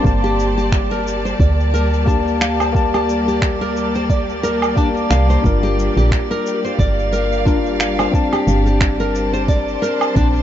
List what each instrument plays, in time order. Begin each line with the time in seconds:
Already playing: string section G3 G4 C5 D5 A5, synth texture D5
0.03 fm bass G1, tine electric piano A#3 G4 A5, kick, shaker
0.24 nylon-string guitar G4, shaker
0.40 shaker
0.58 nylon-string guitar G4, shaker
0.72 finger snap, kick, shaker
0.91 nylon-string guitar A#4, shaker
0.99 string section A#3
1.07 shaker
1.25 nylon-string guitar C5, shaker
1.40 fm bass D2, nylon-string guitar D5, kick, shaker
1.60 shaker
1.74 nylon-string guitar A#4, shaker
1.94 shaker
2.06 tine electric piano A#3 G4 A5, nylon-string guitar D4, kick, shaker
2.28 shaker
2.41 nylon-string guitar F5, finger snap, shaker
2.60 nylon-string guitar C5, low woodblock, shaker
2.72 tine electric piano A#3 G4 A5, kick, shaker
2.94 nylon-string guitar G4, low woodblock, shaker
3.09 shaker
3.28 nylon-string guitar G4, shaker
3.42 finger snap, kick, shaker
3.61 nylon-string guitar A#4, shaker
3.77 shaker
3.95 nylon-string guitar C5, shaker
4.09 nylon-string guitar D5, kick, shaker
4.29 shaker
4.43 nylon-string guitar A#4, shaker
4.62 low woodblock, shaker
4.76 tine electric piano A#3 G4 A5, nylon-string guitar D4, kick, shaker
4.97 shaker
5.10 fm bass C2, nylon-string guitar F5, finger snap, shaker
5.30 nylon-string guitar C5, shaker
5.42 fm bass G1, tine electric piano D4 F4 A#4, kick, shaker
5.63 nylon-string guitar G4, shaker
5.79 shaker
5.97 fm bass A#1, nylon-string guitar G4, shaker
6.11 finger snap, kick, shaker
6.31 nylon-string guitar A#4, shaker
6.46 shaker
6.64 nylon-string guitar C5, string section F5, shaker
6.79 fm bass G1, nylon-string guitar D5, kick, shaker
6.99 shaker
7.12 nylon-string guitar A#4, shaker
7.33 shaker
7.45 tine electric piano D4 F4 A#4, nylon-string guitar D4, kick, shaker
7.66 shaker
7.80 nylon-string guitar F5, finger snap, shaker
7.99 nylon-string guitar C5, low woodblock, shaker
8.12 tine electric piano C4 D4 A5, kick, shaker
8.31 nylon-string guitar G4, string section A5, low woodblock, shaker
8.47 fm bass G1, shaker
8.66 nylon-string guitar G4, shaker
8.81 finger snap, kick, shaker
9.00 nylon-string guitar A#4, shaker
9.13 string section C5, shaker
9.33 nylon-string guitar C5, shaker
9.48 nylon-string guitar D5, kick, shaker
9.68 shaker
9.82 nylon-string guitar A#4, shaker
10.01 low woodblock, shaker
10.15 fm bass A#1, tine electric piano C4 D4 A5, nylon-string guitar D4, kick, shaker
10.36 shaker